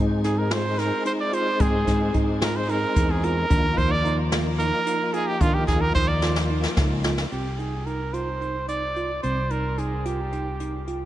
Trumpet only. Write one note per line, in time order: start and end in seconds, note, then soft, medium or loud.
0.24 0.40 G#4 medium
0.38 0.53 A#4 medium
0.52 0.81 C5 loud
0.79 1.06 A#4 medium
1.06 1.13 C5 medium
1.20 1.35 D5 medium
1.34 1.62 C5 loud
1.61 2.15 G#4 medium
2.43 2.58 A#4 medium
2.56 2.72 C5 medium
2.70 3.12 A#4 medium
3.11 3.26 G#4 medium
3.24 3.79 A#4 loud
3.78 3.93 C5 loud
3.91 4.18 D5 medium
4.59 5.15 A#4 loud
5.14 5.29 G#4 loud
5.27 5.42 G4 medium
5.41 5.56 F4 loud
5.54 5.67 G4 medium
5.67 5.82 G#4 medium
5.81 5.94 A#4 loud
5.95 6.09 C5 loud
6.08 6.36 D5 medium
7.31 7.60 G4 medium
7.58 7.88 G#4 medium
7.86 8.15 A#4 medium
8.14 8.68 C5 medium
8.69 9.19 D5 medium
9.23 9.52 C5 medium
9.51 9.80 A#4 medium
9.79 10.08 G#4 medium
10.06 10.88 G4 medium